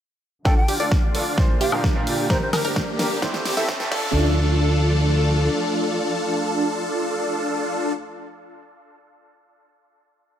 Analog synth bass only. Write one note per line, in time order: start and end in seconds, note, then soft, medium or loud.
0.45 0.64 D2 loud
0.68 0.78 D2 loud
0.92 1.10 D2 loud
1.15 1.33 D2 loud
1.61 1.80 A#1 medium
2.07 2.26 A#1 loud